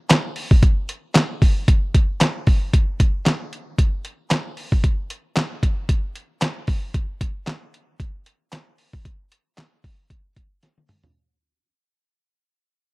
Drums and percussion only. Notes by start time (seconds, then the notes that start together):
0.10 snare, clap, closed hi-hat
0.36 open hi-hat
0.51 kick
0.63 kick, closed hi-hat
0.89 closed hi-hat
1.15 snare, clap, closed hi-hat
1.42 kick, open hi-hat
1.68 kick, closed hi-hat
1.95 kick, closed hi-hat
2.21 snare, clap, closed hi-hat
2.47 kick, open hi-hat
2.73 kick, closed hi-hat
3.00 kick, closed hi-hat
3.26 snare, clap, closed hi-hat
3.53 closed hi-hat
3.78 kick, closed hi-hat
4.05 closed hi-hat
4.31 snare, clap, closed hi-hat
4.57 open hi-hat
4.72 kick
4.84 kick, closed hi-hat
5.10 closed hi-hat
5.36 snare, clap, closed hi-hat
5.63 kick, closed hi-hat
5.89 kick, closed hi-hat
6.16 closed hi-hat
6.42 snare, clap, closed hi-hat
6.67 kick, open hi-hat
6.94 kick, closed hi-hat
7.21 kick, closed hi-hat
7.47 snare, clap, closed hi-hat
7.74 closed hi-hat
8.00 kick, closed hi-hat
8.26 closed hi-hat
8.52 snare, clap, closed hi-hat
8.78 open hi-hat
8.93 kick
9.05 kick, closed hi-hat
9.32 closed hi-hat
9.58 snare, clap, closed hi-hat
9.84 kick, open hi-hat
10.10 kick, closed hi-hat
10.36 kick, closed hi-hat
10.63 snare, closed hi-hat
10.78 high tom
10.88 mid tom, open hi-hat
11.04 floor tom